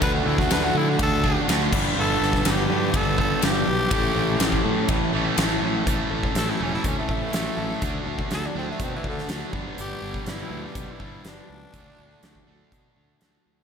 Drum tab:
CC |--------------x-|----------------|----------------|----------------|
RD |b---b---b---b---|----b---b---b---|b---b---b---b---|----------------|
HH |----------------|----------------|----------------|x---x---x---x---|
SD |---oo-------o---|--ooo-------o---|----o-------o---|----o-------o---|
BD |o--o----o-o---o-|---o----o-o-----|o----o--o-------|o--o----o-o-----|

CC |----------------|----------------|----------------|
RD |----------------|----------------|----------------|
HH |x---x---x---x---|x---x---x---x---|x---x---x---x---|
SD |----o------oo---|----o-------o---|----o-------o---|
BD |o--o----o-o---o-|---o----o-o-----|o----o--o-------|